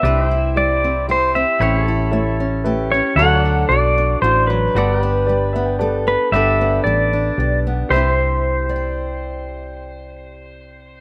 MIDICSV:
0, 0, Header, 1, 6, 480
1, 0, Start_track
1, 0, Key_signature, 0, "major"
1, 0, Tempo, 524476
1, 37, Time_signature, 3, 2, 24, 8
1, 10073, End_track
2, 0, Start_track
2, 0, Title_t, "Pedal steel guitar"
2, 0, Program_c, 0, 26
2, 0, Note_on_c, 0, 76, 92
2, 524, Note_on_c, 0, 74, 87
2, 540, Note_off_c, 0, 76, 0
2, 966, Note_off_c, 0, 74, 0
2, 1019, Note_on_c, 0, 72, 81
2, 1238, Note_on_c, 0, 76, 82
2, 1254, Note_off_c, 0, 72, 0
2, 2159, Note_off_c, 0, 76, 0
2, 2668, Note_on_c, 0, 73, 85
2, 2893, Note_on_c, 0, 78, 106
2, 2918, Note_off_c, 0, 73, 0
2, 3375, Note_on_c, 0, 74, 88
2, 3397, Note_off_c, 0, 78, 0
2, 3858, Note_off_c, 0, 74, 0
2, 3861, Note_on_c, 0, 72, 89
2, 4094, Note_on_c, 0, 71, 76
2, 4114, Note_off_c, 0, 72, 0
2, 5265, Note_off_c, 0, 71, 0
2, 5563, Note_on_c, 0, 71, 81
2, 5787, Note_on_c, 0, 76, 101
2, 5804, Note_off_c, 0, 71, 0
2, 6235, Note_off_c, 0, 76, 0
2, 6258, Note_on_c, 0, 74, 80
2, 6948, Note_off_c, 0, 74, 0
2, 7234, Note_on_c, 0, 72, 82
2, 10073, Note_off_c, 0, 72, 0
2, 10073, End_track
3, 0, Start_track
3, 0, Title_t, "Grand piano"
3, 0, Program_c, 1, 0
3, 26, Note_on_c, 1, 67, 72
3, 28, Note_on_c, 1, 64, 73
3, 30, Note_on_c, 1, 72, 81
3, 331, Note_off_c, 1, 67, 0
3, 333, Note_off_c, 1, 64, 0
3, 333, Note_off_c, 1, 72, 0
3, 508, Note_on_c, 1, 64, 64
3, 510, Note_on_c, 1, 67, 57
3, 510, Note_on_c, 1, 72, 68
3, 812, Note_off_c, 1, 64, 0
3, 813, Note_off_c, 1, 67, 0
3, 814, Note_off_c, 1, 72, 0
3, 988, Note_on_c, 1, 64, 71
3, 991, Note_on_c, 1, 67, 60
3, 993, Note_on_c, 1, 72, 71
3, 1292, Note_off_c, 1, 64, 0
3, 1294, Note_off_c, 1, 67, 0
3, 1294, Note_off_c, 1, 72, 0
3, 1463, Note_on_c, 1, 64, 75
3, 1466, Note_on_c, 1, 73, 85
3, 1467, Note_on_c, 1, 69, 69
3, 1769, Note_off_c, 1, 64, 0
3, 1771, Note_off_c, 1, 69, 0
3, 1771, Note_off_c, 1, 73, 0
3, 1934, Note_on_c, 1, 69, 74
3, 1936, Note_on_c, 1, 64, 77
3, 1939, Note_on_c, 1, 73, 86
3, 2245, Note_off_c, 1, 69, 0
3, 2246, Note_off_c, 1, 64, 0
3, 2247, Note_off_c, 1, 73, 0
3, 2417, Note_on_c, 1, 64, 82
3, 2418, Note_on_c, 1, 71, 88
3, 2420, Note_on_c, 1, 69, 78
3, 2726, Note_off_c, 1, 64, 0
3, 2726, Note_off_c, 1, 71, 0
3, 2727, Note_off_c, 1, 69, 0
3, 2901, Note_on_c, 1, 66, 83
3, 2908, Note_on_c, 1, 69, 72
3, 2910, Note_on_c, 1, 74, 84
3, 3207, Note_off_c, 1, 66, 0
3, 3211, Note_off_c, 1, 69, 0
3, 3212, Note_off_c, 1, 74, 0
3, 3393, Note_on_c, 1, 66, 66
3, 3395, Note_on_c, 1, 69, 60
3, 3395, Note_on_c, 1, 74, 68
3, 3693, Note_off_c, 1, 66, 0
3, 3694, Note_off_c, 1, 69, 0
3, 3694, Note_off_c, 1, 74, 0
3, 3871, Note_on_c, 1, 66, 69
3, 3871, Note_on_c, 1, 69, 62
3, 3873, Note_on_c, 1, 74, 75
3, 4172, Note_off_c, 1, 66, 0
3, 4172, Note_off_c, 1, 69, 0
3, 4173, Note_off_c, 1, 74, 0
3, 4347, Note_on_c, 1, 67, 79
3, 4350, Note_on_c, 1, 74, 85
3, 4355, Note_on_c, 1, 71, 73
3, 4650, Note_off_c, 1, 67, 0
3, 4651, Note_off_c, 1, 74, 0
3, 4654, Note_off_c, 1, 71, 0
3, 4816, Note_on_c, 1, 67, 73
3, 4817, Note_on_c, 1, 71, 71
3, 4821, Note_on_c, 1, 74, 88
3, 5060, Note_on_c, 1, 76, 75
3, 5124, Note_off_c, 1, 67, 0
3, 5124, Note_off_c, 1, 71, 0
3, 5126, Note_off_c, 1, 74, 0
3, 5177, Note_off_c, 1, 76, 0
3, 5177, Note_on_c, 1, 79, 71
3, 5295, Note_off_c, 1, 79, 0
3, 5299, Note_on_c, 1, 74, 89
3, 5299, Note_on_c, 1, 81, 73
3, 5301, Note_on_c, 1, 67, 80
3, 5303, Note_on_c, 1, 71, 75
3, 5605, Note_off_c, 1, 74, 0
3, 5607, Note_off_c, 1, 67, 0
3, 5607, Note_off_c, 1, 71, 0
3, 5751, Note_off_c, 1, 81, 0
3, 5788, Note_on_c, 1, 67, 77
3, 5790, Note_on_c, 1, 71, 67
3, 5791, Note_on_c, 1, 74, 81
3, 6090, Note_off_c, 1, 67, 0
3, 6091, Note_off_c, 1, 71, 0
3, 6092, Note_off_c, 1, 74, 0
3, 6266, Note_on_c, 1, 67, 62
3, 6270, Note_on_c, 1, 74, 68
3, 6271, Note_on_c, 1, 71, 59
3, 6569, Note_off_c, 1, 67, 0
3, 6571, Note_off_c, 1, 74, 0
3, 6572, Note_off_c, 1, 71, 0
3, 6750, Note_on_c, 1, 67, 64
3, 6755, Note_on_c, 1, 71, 62
3, 6757, Note_on_c, 1, 74, 72
3, 7052, Note_off_c, 1, 67, 0
3, 7054, Note_off_c, 1, 71, 0
3, 7055, Note_off_c, 1, 74, 0
3, 7220, Note_on_c, 1, 67, 75
3, 7238, Note_on_c, 1, 72, 69
3, 7258, Note_on_c, 1, 76, 80
3, 10073, Note_off_c, 1, 67, 0
3, 10073, Note_off_c, 1, 72, 0
3, 10073, Note_off_c, 1, 76, 0
3, 10073, End_track
4, 0, Start_track
4, 0, Title_t, "Pedal steel guitar"
4, 0, Program_c, 2, 26
4, 30, Note_on_c, 2, 62, 62
4, 41, Note_on_c, 2, 67, 62
4, 49, Note_on_c, 2, 71, 65
4, 232, Note_off_c, 2, 71, 0
4, 232, Note_on_c, 2, 72, 65
4, 259, Note_off_c, 2, 62, 0
4, 259, Note_on_c, 2, 64, 62
4, 1457, Note_off_c, 2, 64, 0
4, 1463, Note_off_c, 2, 67, 0
4, 1467, Note_off_c, 2, 72, 0
4, 1470, Note_on_c, 2, 64, 63
4, 1477, Note_on_c, 2, 67, 65
4, 1487, Note_on_c, 2, 73, 69
4, 1706, Note_off_c, 2, 67, 0
4, 1706, Note_on_c, 2, 69, 65
4, 2896, Note_off_c, 2, 64, 0
4, 2900, Note_off_c, 2, 69, 0
4, 2905, Note_off_c, 2, 73, 0
4, 2905, Note_on_c, 2, 64, 65
4, 2920, Note_on_c, 2, 69, 66
4, 2923, Note_on_c, 2, 73, 68
4, 3106, Note_off_c, 2, 73, 0
4, 3106, Note_on_c, 2, 74, 68
4, 3134, Note_off_c, 2, 64, 0
4, 3134, Note_on_c, 2, 66, 65
4, 4333, Note_off_c, 2, 66, 0
4, 4340, Note_off_c, 2, 74, 0
4, 4341, Note_off_c, 2, 69, 0
4, 4362, Note_on_c, 2, 66, 69
4, 4370, Note_on_c, 2, 69, 64
4, 4377, Note_on_c, 2, 74, 65
4, 4546, Note_off_c, 2, 66, 0
4, 4546, Note_on_c, 2, 67, 69
4, 4599, Note_off_c, 2, 69, 0
4, 4599, Note_on_c, 2, 71, 64
4, 5782, Note_off_c, 2, 67, 0
4, 5787, Note_off_c, 2, 71, 0
4, 5788, Note_off_c, 2, 74, 0
4, 5797, Note_on_c, 2, 67, 65
4, 5806, Note_on_c, 2, 71, 65
4, 5816, Note_on_c, 2, 74, 62
4, 7221, Note_off_c, 2, 67, 0
4, 7225, Note_off_c, 2, 71, 0
4, 7230, Note_off_c, 2, 74, 0
4, 7237, Note_on_c, 2, 67, 59
4, 7244, Note_on_c, 2, 71, 60
4, 7255, Note_on_c, 2, 76, 63
4, 7445, Note_off_c, 2, 71, 0
4, 7445, Note_on_c, 2, 72, 60
4, 10073, Note_off_c, 2, 67, 0
4, 10073, Note_off_c, 2, 72, 0
4, 10073, Note_off_c, 2, 76, 0
4, 10073, End_track
5, 0, Start_track
5, 0, Title_t, "Steel-string acoustic guitar"
5, 0, Program_c, 3, 25
5, 0, Note_on_c, 3, 67, 70
5, 45, Note_on_c, 3, 48, 77
5, 56, Note_on_c, 3, 60, 61
5, 286, Note_on_c, 3, 64, 61
5, 473, Note_off_c, 3, 48, 0
5, 520, Note_on_c, 3, 55, 61
5, 760, Note_off_c, 3, 60, 0
5, 771, Note_on_c, 3, 60, 56
5, 950, Note_off_c, 3, 55, 0
5, 995, Note_on_c, 3, 55, 65
5, 998, Note_off_c, 3, 67, 0
5, 1002, Note_on_c, 3, 67, 70
5, 1231, Note_off_c, 3, 60, 0
5, 1242, Note_on_c, 3, 60, 57
5, 1427, Note_off_c, 3, 55, 0
5, 1450, Note_off_c, 3, 60, 0
5, 1451, Note_off_c, 3, 64, 0
5, 1478, Note_on_c, 3, 45, 72
5, 1485, Note_on_c, 3, 61, 61
5, 1723, Note_on_c, 3, 64, 59
5, 1908, Note_off_c, 3, 45, 0
5, 1948, Note_on_c, 3, 57, 57
5, 2186, Note_off_c, 3, 61, 0
5, 2197, Note_on_c, 3, 61, 55
5, 2383, Note_off_c, 3, 57, 0
5, 2423, Note_off_c, 3, 67, 0
5, 2430, Note_on_c, 3, 57, 64
5, 2437, Note_on_c, 3, 67, 56
5, 2675, Note_off_c, 3, 61, 0
5, 2690, Note_on_c, 3, 61, 56
5, 2864, Note_off_c, 3, 57, 0
5, 2889, Note_off_c, 3, 64, 0
5, 2893, Note_off_c, 3, 61, 0
5, 2913, Note_off_c, 3, 67, 0
5, 2916, Note_on_c, 3, 50, 80
5, 2922, Note_on_c, 3, 54, 66
5, 2932, Note_on_c, 3, 62, 63
5, 2939, Note_on_c, 3, 66, 55
5, 2945, Note_on_c, 3, 69, 69
5, 3148, Note_off_c, 3, 66, 0
5, 3159, Note_on_c, 3, 66, 56
5, 3346, Note_off_c, 3, 50, 0
5, 3390, Note_off_c, 3, 54, 0
5, 3401, Note_on_c, 3, 54, 58
5, 3637, Note_off_c, 3, 62, 0
5, 3640, Note_on_c, 3, 62, 57
5, 3828, Note_off_c, 3, 54, 0
5, 3881, Note_on_c, 3, 52, 70
5, 4116, Note_off_c, 3, 52, 0
5, 4118, Note_on_c, 3, 54, 63
5, 4326, Note_off_c, 3, 66, 0
5, 4354, Note_off_c, 3, 54, 0
5, 4360, Note_on_c, 3, 43, 76
5, 4365, Note_off_c, 3, 62, 0
5, 4369, Note_on_c, 3, 59, 67
5, 4387, Note_off_c, 3, 69, 0
5, 4603, Note_on_c, 3, 62, 61
5, 4787, Note_off_c, 3, 43, 0
5, 4843, Note_on_c, 3, 55, 58
5, 5074, Note_off_c, 3, 59, 0
5, 5085, Note_on_c, 3, 59, 57
5, 5269, Note_off_c, 3, 55, 0
5, 5315, Note_on_c, 3, 55, 66
5, 5323, Note_on_c, 3, 69, 68
5, 5545, Note_off_c, 3, 59, 0
5, 5556, Note_on_c, 3, 59, 57
5, 5745, Note_off_c, 3, 55, 0
5, 5765, Note_off_c, 3, 59, 0
5, 5768, Note_off_c, 3, 69, 0
5, 5798, Note_on_c, 3, 43, 68
5, 5800, Note_off_c, 3, 62, 0
5, 5804, Note_on_c, 3, 59, 60
5, 5811, Note_on_c, 3, 62, 62
5, 5818, Note_on_c, 3, 69, 68
5, 6038, Note_off_c, 3, 59, 0
5, 6050, Note_on_c, 3, 59, 54
5, 6227, Note_off_c, 3, 43, 0
5, 6284, Note_on_c, 3, 55, 60
5, 6516, Note_off_c, 3, 62, 0
5, 6527, Note_on_c, 3, 62, 52
5, 6710, Note_off_c, 3, 55, 0
5, 6771, Note_on_c, 3, 50, 61
5, 7001, Note_off_c, 3, 59, 0
5, 7018, Note_on_c, 3, 59, 52
5, 7194, Note_off_c, 3, 50, 0
5, 7216, Note_off_c, 3, 59, 0
5, 7217, Note_off_c, 3, 69, 0
5, 7243, Note_on_c, 3, 48, 62
5, 7262, Note_on_c, 3, 60, 59
5, 7282, Note_on_c, 3, 64, 58
5, 7297, Note_off_c, 3, 62, 0
5, 7301, Note_on_c, 3, 67, 54
5, 7952, Note_off_c, 3, 67, 0
5, 7956, Note_on_c, 3, 74, 63
5, 8016, Note_on_c, 3, 79, 57
5, 10073, Note_off_c, 3, 48, 0
5, 10073, Note_off_c, 3, 60, 0
5, 10073, Note_off_c, 3, 64, 0
5, 10073, Note_off_c, 3, 74, 0
5, 10073, Note_off_c, 3, 79, 0
5, 10073, End_track
6, 0, Start_track
6, 0, Title_t, "Fingered electric bass"
6, 0, Program_c, 4, 33
6, 26, Note_on_c, 4, 36, 84
6, 1311, Note_off_c, 4, 36, 0
6, 1463, Note_on_c, 4, 33, 92
6, 2748, Note_off_c, 4, 33, 0
6, 2889, Note_on_c, 4, 38, 88
6, 3326, Note_off_c, 4, 38, 0
6, 3380, Note_on_c, 4, 35, 82
6, 3793, Note_off_c, 4, 35, 0
6, 3863, Note_on_c, 4, 33, 83
6, 4275, Note_off_c, 4, 33, 0
6, 4346, Note_on_c, 4, 31, 88
6, 5629, Note_off_c, 4, 31, 0
6, 5782, Note_on_c, 4, 31, 84
6, 6213, Note_off_c, 4, 31, 0
6, 6271, Note_on_c, 4, 33, 77
6, 6679, Note_off_c, 4, 33, 0
6, 6752, Note_on_c, 4, 35, 81
6, 7160, Note_off_c, 4, 35, 0
6, 7232, Note_on_c, 4, 36, 83
6, 10073, Note_off_c, 4, 36, 0
6, 10073, End_track
0, 0, End_of_file